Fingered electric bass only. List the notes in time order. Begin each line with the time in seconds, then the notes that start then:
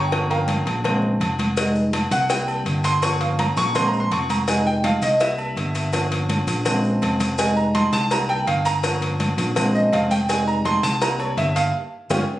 Already playing: G1
0.66 A#1
1.20 F1
2.11 C2
2.65 G1
3.57 A#1
4.11 F1
5.02 C2
5.56 G1
6.47 A#1
7.02 F1
7.92 C2
8.47 G1
9.38 A#1
9.93 F1
10.83 C2
11.37 G1
12.10 G1